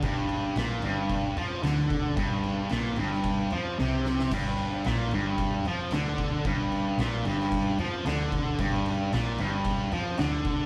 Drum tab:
CC |x-x-x-x-x-x-x-x-|x-x-x-x-x-x-----|x-x-x-x-x-x-x-x-|x-x-x-x-x-x-x-x-|
SD |----o-------o---|----o--o----o-oo|----o-------o---|----o--o----o---|
BD |o-------o-----o-|o-------o-------|o-------o-----o-|o-------o-----o-|

CC |x-x-x-x-x-x-x-x-|
SD |----o-------o---|
BD |o-------o-----o-|